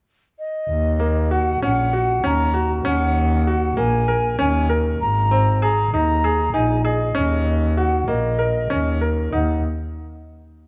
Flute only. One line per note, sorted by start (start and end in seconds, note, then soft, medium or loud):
0.38 1.32 D#5 medium
1.30 1.62 F#5 medium
1.63 2.27 F#5 medium
2.26 2.71 A#5 medium
2.86 3.79 F#5 medium
3.77 4.38 G#5 medium
4.39 4.71 G#5 medium
5.00 5.58 A#5 medium
5.61 5.90 A#5 medium
5.92 6.50 A#5 medium
6.52 6.82 G#5 medium
6.84 7.79 D#5 medium
7.77 8.07 F#5 medium
8.07 8.98 D#5 medium
9.33 9.62 F#5 medium